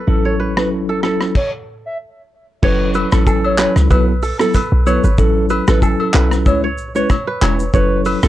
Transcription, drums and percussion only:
0.57 cross-stick loud
1.03 cross-stick medium
1.21 cross-stick medium
1.35 kick loud
1.35 crash medium
2.63 kick loud
2.63 crash loud
2.94 high agogo medium
2.94 shaker medium
3.12 cross-stick loud
3.12 shaker medium
3.27 kick loud
3.27 low woodblock medium
3.27 shaker medium
3.45 high agogo medium
3.59 cross-stick loud
3.59 clap loud
3.59 shaker medium
3.76 cross-stick medium
3.76 shaker medium
3.91 kick loud
3.91 high agogo medium
3.91 shaker medium
4.23 open hi-hat medium
4.23 shaker medium
4.39 cross-stick medium
4.39 shaker medium
4.54 kick medium
4.54 hi-hat pedal medium
4.54 high agogo medium
4.54 shaker medium
4.87 high agogo medium
4.87 shaker medium
5.04 shaker medium
5.18 kick loud
5.18 shaker medium
5.50 high agogo medium
5.50 shaker medium
5.67 cross-stick loud
5.67 shaker medium
5.82 kick loud
5.82 low woodblock medium
5.82 shaker medium
6.00 high agogo medium
6.14 cross-stick loud
6.14 clap loud
6.14 shaker medium
6.31 cross-stick medium
6.31 shaker medium
6.46 kick loud
6.46 high agogo medium
6.46 shaker medium
6.78 shaker medium
6.96 shaker medium
7.10 kick medium
7.10 cross-stick medium
7.10 high agogo medium
7.10 shaker medium
7.42 cross-stick loud
7.42 clap loud
7.42 high agogo medium
7.42 shaker medium
7.59 shaker medium
7.74 kick loud
7.74 shaker medium
8.05 open hi-hat medium
8.05 high agogo medium
8.05 shaker medium
8.23 cross-stick loud
8.23 shaker medium

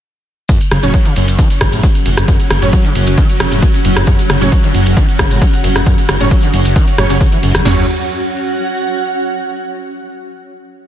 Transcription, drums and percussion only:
0.49 kick loud
0.49 closed hi-hat medium
0.49 shaker medium
0.61 closed hi-hat medium
0.61 shaker soft
0.71 cross-stick medium
0.71 open hi-hat loud
0.71 ride medium
0.83 closed hi-hat medium
0.83 shaker medium
0.94 kick loud
0.94 closed hi-hat medium
0.94 shaker medium
1.06 closed hi-hat medium
1.06 shaker soft
1.16 open hi-hat medium
1.16 ride medium
1.28 closed hi-hat medium
1.28 shaker medium
1.39 kick loud
1.39 closed hi-hat medium
1.39 shaker medium
1.50 closed hi-hat medium
1.50 shaker soft
1.61 kick medium
1.61 cross-stick medium
1.61 open hi-hat loud
1.61 ride medium
1.73 closed hi-hat medium
1.73 shaker medium
1.83 kick loud
1.83 closed hi-hat medium
1.83 shaker medium
1.95 closed hi-hat medium
1.95 shaker soft
2.06 open hi-hat loud
2.06 ride medium
2.17 cross-stick medium
2.17 closed hi-hat medium
2.17 shaker medium
2.28 kick loud
2.28 closed hi-hat medium
2.28 shaker soft
2.40 closed hi-hat medium
2.40 shaker soft
2.51 cross-stick medium
2.51 open hi-hat loud
2.51 ride medium
2.62 closed hi-hat medium
2.62 shaker medium
2.73 kick loud
2.73 closed hi-hat medium
2.73 shaker medium
2.85 closed hi-hat medium
2.85 shaker soft
2.95 open hi-hat medium
2.95 ride medium
3.07 closed hi-hat medium
3.07 shaker medium
3.18 kick loud
3.18 closed hi-hat medium
3.18 shaker medium
3.30 closed hi-hat medium
3.30 shaker soft
3.40 cross-stick medium
3.40 open hi-hat loud
3.40 ride medium
3.52 closed hi-hat medium
3.52 shaker medium
3.62 kick loud
3.62 closed hi-hat medium
3.62 shaker soft
3.74 closed hi-hat medium
3.74 shaker soft
3.85 open hi-hat loud
3.85 ride medium
3.96 cross-stick medium
3.96 closed hi-hat medium
3.96 shaker medium
4.07 kick loud
4.07 closed hi-hat medium
4.07 shaker medium
4.19 closed hi-hat medium
4.19 shaker soft
4.30 cross-stick medium
4.30 open hi-hat loud
4.30 ride medium
4.41 closed hi-hat medium
4.41 shaker medium
4.52 kick loud
4.52 closed hi-hat medium
4.52 shaker medium
4.64 closed hi-hat medium
4.64 shaker soft
4.75 open hi-hat loud
4.75 ride medium
4.86 closed hi-hat medium
4.86 shaker medium
4.97 kick loud
4.97 closed hi-hat medium
4.97 shaker soft
5.09 closed hi-hat medium
5.09 shaker soft
5.19 kick medium
5.19 cross-stick medium
5.19 open hi-hat loud
5.19 ride medium
5.31 closed hi-hat medium
5.31 shaker medium
5.42 kick loud
5.42 closed hi-hat medium
5.42 shaker soft
5.53 closed hi-hat medium
5.53 shaker soft
5.64 open hi-hat loud
5.64 ride medium
5.76 cross-stick medium
5.76 closed hi-hat medium
5.76 shaker medium
5.86 kick loud
5.86 closed hi-hat medium
5.86 shaker medium
5.98 closed hi-hat medium
5.98 shaker soft
6.09 cross-stick medium
6.09 open hi-hat loud
6.09 ride medium
6.21 closed hi-hat medium
6.21 shaker medium
6.31 kick loud
6.31 closed hi-hat medium
6.31 shaker medium
6.43 closed hi-hat medium
6.43 shaker soft
6.54 open hi-hat loud
6.54 ride medium
6.65 closed hi-hat medium
6.65 shaker medium
6.76 kick loud
6.76 closed hi-hat medium
6.76 shaker medium
6.88 closed hi-hat medium
6.88 shaker soft
6.98 cross-stick loud
6.98 open hi-hat loud
6.98 ride medium
7.10 closed hi-hat medium
7.10 shaker medium
7.21 kick loud
7.21 closed hi-hat medium
7.21 shaker soft
7.32 closed hi-hat medium
7.32 shaker soft
7.43 open hi-hat loud
7.43 ride medium
7.55 cross-stick medium
7.55 closed hi-hat medium
7.55 shaker medium
7.65 snare loud
7.65 floor tom loud
7.65 crash medium

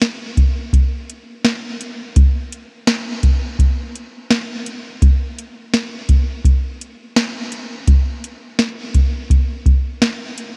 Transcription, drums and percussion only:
0.02 snare medium
0.02 closed hi-hat medium
0.38 kick medium
0.38 closed hi-hat soft
0.73 kick medium
0.73 closed hi-hat medium
1.09 closed hi-hat soft
1.44 snare medium
1.44 closed hi-hat medium
1.81 closed hi-hat soft
2.16 kick loud
2.16 closed hi-hat medium
2.52 closed hi-hat soft
2.87 snare medium
2.87 closed hi-hat medium
3.23 kick medium
3.23 closed hi-hat soft
3.59 kick medium
3.59 closed hi-hat medium
3.95 closed hi-hat soft
4.31 snare medium
4.31 closed hi-hat medium
4.66 closed hi-hat soft
5.02 kick medium
5.02 closed hi-hat medium
5.38 closed hi-hat soft
5.73 snare medium
5.73 closed hi-hat medium
6.09 kick medium
6.09 closed hi-hat medium
6.45 kick medium
6.45 closed hi-hat medium
6.81 closed hi-hat soft
7.16 snare medium
7.16 closed hi-hat medium
7.52 closed hi-hat soft
7.87 kick medium
7.87 closed hi-hat medium
8.24 closed hi-hat soft
8.59 snare medium
8.59 closed hi-hat medium
8.94 kick medium
8.94 closed hi-hat medium
9.30 kick medium
9.30 closed hi-hat medium
9.66 kick medium
9.66 closed hi-hat soft
10.02 snare medium
10.02 closed hi-hat medium
10.38 closed hi-hat soft

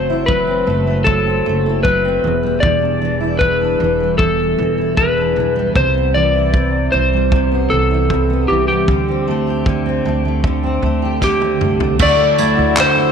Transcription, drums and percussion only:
0.28 kick medium
1.07 kick loud
1.85 kick medium
2.63 kick loud
3.41 kick medium
4.19 kick loud
4.97 kick medium
5.76 kick loud
6.54 kick medium
7.32 kick loud
8.10 kick medium
8.88 kick loud
9.66 kick loud
10.44 kick medium
11.22 kick medium
11.22 snare soft
11.42 high tom medium
11.61 mid tom medium
11.80 floor tom medium
11.99 kick loud
11.99 crash loud
12.38 tambourine medium
12.77 clap loud

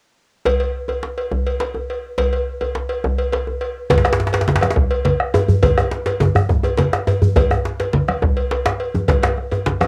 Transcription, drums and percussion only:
0.45 cowbell medium
0.45 djembe slap medium
0.45 djembe tone medium
0.45 djembe bass medium
0.60 cowbell soft
0.88 cowbell soft
0.88 djembe tone soft
1.03 djembe slap medium
1.18 cowbell soft
1.32 djembe slap soft
1.32 djembe tone medium
1.32 djembe bass medium
1.47 cowbell soft
1.60 cowbell soft
1.60 djembe slap medium
1.75 djembe tone soft
1.90 cowbell soft
2.18 cowbell medium
2.18 djembe slap medium
2.18 djembe tone medium
2.18 djembe bass medium
2.33 cowbell soft
2.61 cowbell soft
2.61 djembe tone soft
2.75 djembe slap medium
2.89 cowbell soft
3.04 djembe slap soft
3.04 djembe tone medium
3.04 djembe bass medium
3.19 cowbell soft
3.33 cowbell soft
3.33 djembe slap medium
3.47 djembe tone soft
3.61 cowbell soft
3.90 bombo low medium
3.90 cowbell medium
3.90 djembe slap medium
3.90 djembe tone medium
3.90 low conga medium
3.90 djembe bass medium
3.98 djembe slap medium
4.05 bombo rim medium
4.05 cowbell medium
4.05 djembe slap medium
4.13 djembe slap loud
4.20 djembe slap medium
4.27 djembe slap medium
4.33 cowbell medium
4.33 djembe slap medium
4.41 djembe slap medium
4.48 djembe slap medium
4.48 low conga medium
4.56 djembe slap medium
4.61 bombo rim medium
4.61 cowbell soft
4.61 djembe slap medium
4.61 high conga soft
4.71 djembe slap medium
4.76 bombo low medium
4.76 djembe slap soft
4.76 djembe tone medium
4.76 djembe bass medium
4.91 cowbell soft
4.91 djembe slap soft
5.05 cowbell medium
5.05 djembe slap medium
5.05 low conga medium
5.20 bombo rim medium
5.34 cowbell medium
5.34 djembe tone loud
5.48 high conga medium
5.48 djembe bass medium
5.63 bombo low medium
5.63 cowbell medium
5.63 djembe slap medium
5.63 djembe tone medium
5.63 djembe bass medium
5.63 low conga medium
5.77 bombo rim medium
5.77 cowbell medium
5.77 djembe tone medium
5.91 djembe slap medium
6.06 cowbell soft
6.06 djembe slap medium
6.20 djembe slap medium
6.20 djembe tone medium
6.20 low conga medium
6.35 bombo rim medium
6.35 high conga medium
6.35 djembe bass medium
6.49 bombo low medium
6.49 djembe slap soft
6.49 djembe tone medium
6.49 djembe bass medium
6.63 cowbell soft
6.63 djembe slap soft
6.63 djembe tone medium
6.77 cowbell soft
6.77 djembe slap medium
6.77 low conga medium
6.93 bombo rim medium
6.93 djembe slap medium
7.07 cowbell soft
7.07 djembe tone loud
7.22 high conga medium
7.22 djembe bass medium
7.36 bombo low medium
7.36 cowbell medium
7.36 djembe slap medium
7.36 djembe tone medium
7.36 djembe bass medium
7.36 low conga medium
7.51 bombo rim medium
7.51 djembe tone medium
7.65 djembe slap medium
7.80 cowbell soft
7.80 djembe slap medium
7.93 djembe slap medium
7.93 low conga medium
8.08 bombo rim medium
8.08 cowbell soft
8.08 high conga medium
8.22 bombo low medium
8.22 djembe slap soft
8.22 djembe tone medium
8.22 djembe bass medium
8.37 cowbell soft
8.37 djembe slap soft
8.51 cowbell soft
8.51 djembe slap medium
8.66 bombo rim medium
8.66 djembe slap medium
8.80 cowbell soft
8.94 high conga medium
8.94 djembe tone medium
9.08 bombo rim soft
9.08 bombo low medium
9.08 cowbell medium
9.08 djembe slap medium
9.08 djembe tone medium
9.08 low conga medium
9.08 djembe bass medium
9.23 bombo rim medium
9.23 cowbell soft
9.23 djembe slap loud
9.23 djembe slap soft
9.37 bombo rim soft
9.37 djembe slap soft
9.37 high conga soft
9.51 cowbell soft
9.51 djembe slap soft
9.51 djembe tone medium
9.66 djembe slap medium
9.66 low conga medium
9.81 bombo rim medium
9.81 cowbell soft
9.81 djembe slap medium
9.81 high conga medium

